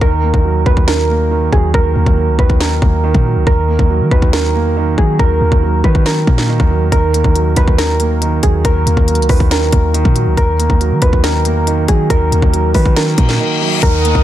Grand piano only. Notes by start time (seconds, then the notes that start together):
0.01 D#3
0.23 A#3
0.45 F#3
0.66 D#3
0.88 D#3
1.09 A#3
1.31 D#3
1.53 F#3
1.74 D#3
1.96 A#3
2.17 F#3
2.39 D#3
2.60 D#3
2.82 A#3
3.04 D#3
3.25 F#3
3.47 D#3
3.68 A#3
3.90 F#3
4.11 D#3
4.33 D#3
4.55 A#3
4.76 D#3
4.98 F#3
5.19 D#3
5.41 A#3
5.62 F#3
5.84 D#3
6.06 D#3
6.27 A#3
6.49 D#3
6.70 F#3
6.92 D#3
7.14 A#3
7.35 F#3
7.57 D#3
7.78 D#3
8.00 A#3
8.22 D#3
8.43 F#3
8.65 D#3
8.86 A#3
9.08 F#3
9.29 D#3
9.51 D#3
9.72 A#3
9.94 D#3
10.16 F#3
10.59 A#3
10.81 F#3
11.02 D#3
11.24 D#3
11.45 A#3
11.67 D#3
11.88 F#3
12.10 D#3
12.32 A#3
12.53 F#3
12.75 D#3
12.96 D#3
13.18 A#3
13.40 D#3
13.61 F#3
13.83 D#3
14.05 A#3